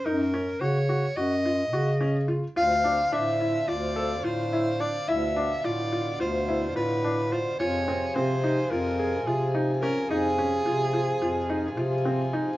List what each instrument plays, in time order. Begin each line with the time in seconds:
0.04 bass clarinet F#2, felt piano D#4, soprano saxophone A#4
0.34 felt piano C#4
0.60 bass clarinet C#3, felt piano F#4, soprano saxophone C#5
0.89 felt piano F#4
1.16 bass clarinet F#2, felt piano F#4, soprano saxophone D#5
1.45 felt piano F4
1.72 bass clarinet C#3, felt piano F#4
2.01 felt piano C#4
2.28 felt piano F4
2.56 bass clarinet D2, harmonium D3 C4 F4, felt piano F4, soprano saxophone F5
2.84 felt piano D4
3.12 bass clarinet A2, felt piano D4, soprano saxophone E5
3.40 felt piano E4
3.68 bass clarinet D2, felt piano F4, soprano saxophone D5
3.96 felt piano A4
4.24 bass clarinet A2, felt piano F4, soprano saxophone C5
4.53 felt piano E4
4.80 felt piano D4, soprano saxophone D5
5.08 bass clarinet D2, harmonium B2, felt piano E4, soprano saxophone E5
5.36 felt piano D4
5.64 bass clarinet A2, felt piano F4, soprano saxophone D5
5.92 felt piano F4
6.19 bass clarinet D2, felt piano F4, soprano saxophone C5
6.48 felt piano E4
6.75 bass clarinet A2, felt piano F4, soprano saxophone B4
7.04 felt piano D4
7.32 felt piano F4, soprano saxophone C5
7.59 bass clarinet F2, harmonium C3 F3 G#4, felt piano F4, soprano saxophone C#5
7.88 felt piano C4
8.15 bass clarinet C3, felt piano C4, soprano saxophone C5
8.44 felt piano D#4
8.70 bass clarinet F2, felt piano F4, soprano saxophone A#4
8.99 felt piano G#4
9.27 bass clarinet C3, felt piano F4, soprano saxophone G#4
9.55 felt piano D#4
9.81 felt piano C#4, soprano saxophone A#4
10.09 bass clarinet F2, felt piano D#4, soprano saxophone G#4
10.38 felt piano C#4
10.66 bass clarinet C3, felt piano F4
10.93 felt piano F4
11.22 bass clarinet F2, felt piano F4
11.49 felt piano D#4
11.77 bass clarinet C3, felt piano F4
12.05 felt piano C4
12.33 felt piano D#4